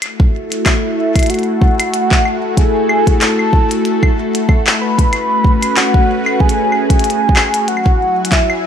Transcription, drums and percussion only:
0.02 closed hi-hat medium
0.02 claves medium
0.20 kick loud
0.52 closed hi-hat medium
0.66 kick loud
0.66 clap loud
0.66 closed hi-hat medium
0.66 claves medium
1.16 kick loud
1.16 closed hi-hat medium
1.16 claves medium
1.19 closed hi-hat medium
1.19 claves soft
1.23 closed hi-hat soft
1.23 claves soft
1.26 closed hi-hat soft
1.26 claves soft
1.30 closed hi-hat medium
1.34 closed hi-hat soft
1.34 claves soft
1.39 closed hi-hat soft
1.39 claves soft
1.43 closed hi-hat soft
1.43 claves soft
1.61 kick loud
1.80 closed hi-hat medium
1.80 claves medium
1.94 closed hi-hat medium
2.11 kick loud
2.11 clap loud
2.26 claves medium
2.57 kick loud
2.57 closed hi-hat medium
2.89 claves medium
3.07 kick loud
3.07 closed hi-hat medium
3.21 clap loud
3.21 closed hi-hat medium
3.39 claves medium
3.53 kick loud
3.71 closed hi-hat medium
3.85 closed hi-hat medium
4.03 kick loud
4.03 claves medium
4.35 closed hi-hat medium
4.49 kick loud
4.49 claves medium
4.67 clap loud
4.99 kick loud
4.99 closed hi-hat medium
5.13 closed hi-hat medium
5.13 claves medium
5.44 kick loud
5.63 closed hi-hat medium
5.63 claves soft
5.77 clap loud
5.77 closed hi-hat medium
5.94 kick loud
6.26 claves medium
6.40 kick loud
6.49 closed hi-hat medium
6.72 claves medium
6.90 kick loud
6.90 closed hi-hat medium
6.99 closed hi-hat medium
7.04 closed hi-hat medium
7.10 closed hi-hat soft
7.29 kick loud
7.36 clap loud
7.36 claves medium
7.39 claves medium
7.41 claves soft
7.44 claves soft
7.46 claves soft
7.49 claves soft
7.51 closed hi-hat medium
7.51 claves soft
7.68 closed hi-hat medium
7.77 claves soft
7.86 kick loud
8.25 closed hi-hat medium
8.32 kick loud
8.32 clap loud
8.32 closed hi-hat medium
8.50 claves medium

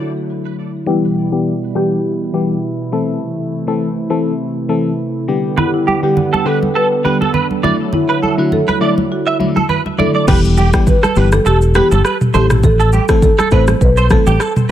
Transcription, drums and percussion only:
5.58 low conga medium
5.88 high conga medium
6.17 low conga medium
6.34 high conga medium
6.63 high conga medium
7.05 high conga medium
7.22 high conga medium
7.34 low conga medium
7.51 high conga medium
7.64 high conga medium
7.64 low conga medium
7.93 low conga medium
8.23 high conga medium
8.52 low conga medium
8.69 high conga medium
8.98 high conga medium
9.41 high conga medium
9.57 high conga medium
9.69 low conga medium
9.86 high conga medium
9.99 high conga medium
9.99 low conga medium
10.28 kick loud
10.28 crash medium
10.28 low conga medium
10.28 shaker medium
10.45 shaker medium
10.57 high conga medium
10.57 shaker medium
10.73 kick medium
10.73 cross-stick loud
10.73 shaker medium
10.87 kick medium
10.87 low conga medium
10.87 shaker medium
11.03 cross-stick medium
11.03 high conga medium
11.03 shaker medium
11.16 shaker soft
11.32 cross-stick medium
11.32 high conga medium
11.32 shaker medium
11.46 shaker medium
11.62 shaker medium
11.75 cross-stick loud
11.75 high conga medium
11.75 shaker medium
11.92 high conga medium
11.92 shaker loud
12.05 cross-stick medium
12.05 shaker medium
12.21 mid tom medium
12.21 high conga medium
12.21 shaker soft
12.34 high conga medium
12.34 low conga medium
12.34 shaker soft
12.50 cross-stick loud
12.50 mid tom loud
12.50 shaker loud
12.63 kick loud
12.63 low conga medium
12.63 shaker medium
12.80 shaker medium
12.93 high conga medium
12.93 shaker medium
13.09 kick medium
13.09 cross-stick medium
13.09 shaker loud
13.22 kick medium
13.22 low conga medium
13.22 shaker medium
13.39 cross-stick medium
13.39 high conga medium
13.39 shaker medium
13.51 kick medium
13.51 shaker soft
13.67 cross-stick medium
13.67 high conga medium
13.67 shaker loud
13.81 kick medium
13.81 shaker medium
13.97 shaker soft
14.10 kick loud
14.10 cross-stick loud
14.10 high conga medium
14.10 shaker medium
14.27 high conga medium
14.27 shaker medium
14.40 cross-stick medium
14.40 shaker medium
14.56 mid tom medium
14.56 high conga medium
14.56 shaker soft

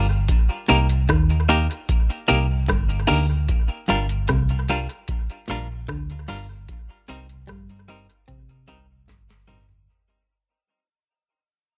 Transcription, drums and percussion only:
0.28 kick loud
0.28 closed hi-hat medium
0.69 closed hi-hat medium
0.89 closed hi-hat medium
1.09 kick loud
1.09 cross-stick loud
1.09 closed hi-hat medium
1.30 closed hi-hat medium
1.49 closed hi-hat medium
1.71 closed hi-hat medium
1.89 kick loud
1.89 closed hi-hat medium
2.10 closed hi-hat soft
2.29 closed hi-hat medium
2.69 kick loud
2.69 cross-stick loud
2.69 closed hi-hat medium
2.90 closed hi-hat medium
3.09 open hi-hat medium
3.49 kick loud
3.49 closed hi-hat medium
3.89 closed hi-hat medium
4.09 closed hi-hat medium
4.28 kick loud
4.28 cross-stick loud
4.28 closed hi-hat medium
4.49 closed hi-hat medium
4.68 closed hi-hat medium
4.89 closed hi-hat medium
5.08 kick loud
5.08 closed hi-hat loud
5.30 closed hi-hat soft
5.48 closed hi-hat medium
5.89 kick loud
5.89 cross-stick loud
5.89 closed hi-hat medium
6.10 closed hi-hat medium
6.28 open hi-hat medium
6.68 kick loud
6.68 closed hi-hat medium
7.08 closed hi-hat medium
7.29 closed hi-hat medium
7.48 kick loud
7.48 cross-stick loud
7.48 closed hi-hat medium
7.70 closed hi-hat medium
7.88 closed hi-hat medium
8.10 closed hi-hat medium
8.28 kick loud
8.28 closed hi-hat medium
8.49 closed hi-hat soft
8.68 closed hi-hat medium
9.08 kick loud
9.08 snare medium
9.08 closed hi-hat medium
9.29 snare medium
9.29 closed hi-hat medium
9.48 closed hi-hat medium
9.48 mid tom loud
9.69 floor tom medium

